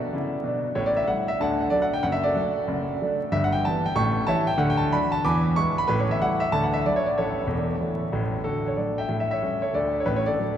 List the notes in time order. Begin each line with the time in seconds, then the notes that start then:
Already playing: F#4 A4 D5
0.13 C#3 E4
0.43 B2 D4
0.75 A1 A2 C#5
0.86 D5
0.97 E5
1.07 G3 A3 E4 F#5
1.28 E5
1.40 D2 D3 D5 F#5 A5
1.61 F#5
1.70 F#3 A3 D4 D5
1.82 F#5
1.93 G5
2.03 F#1 F#2 F#5
2.12 E5
2.23 F#4 A4 D5
2.34 F#3 A3 D4
2.67 F#1 F#2
3.01 F#3 A3 D4
3.32 G1 G2 E5
3.44 F#5
3.52 G5
3.65 E3 B3 G4 A5
3.86 G5
3.96 A1 A2 G5 A5 C#6
4.27 E3 E4 G4 C#5 E5 A5
4.47 G5
4.57 D2 D3 F#5
4.70 G5
4.77 A5
4.92 F#3 D4 F#4 B5
5.12 A5
5.24 E2 E3 G#5 B5 D6
5.56 G#3 B3 E4 C#6
5.78 B5
5.88 A1 A2 B4
6.00 C#5
6.11 E5
6.22 G3 A3 E4 F#5
6.40 E5
6.52 D2 D3 A5
6.63 F#5
6.73 E5
6.86 F#3 A3 D4 D5
6.96 C#5
7.06 D5
7.17 A1 A2 E4 A4 C#5
7.46 E1 E2
7.81 E3 A3 E4
8.13 A1 A2
8.44 D3 F#4 A4
8.68 C#5
8.76 F#3 A3 D4 A4 D5
8.98 E5 G5
9.09 A2
9.20 E5
9.31 C#5 E5
9.42 G3 A3 C#4
9.62 A4 C#5
9.74 D2 D3 A4 D5
10.00 C#5
10.06 A1 A2 B4
10.16 C#5
10.26 A4 D5
10.39 F#3 A3 D4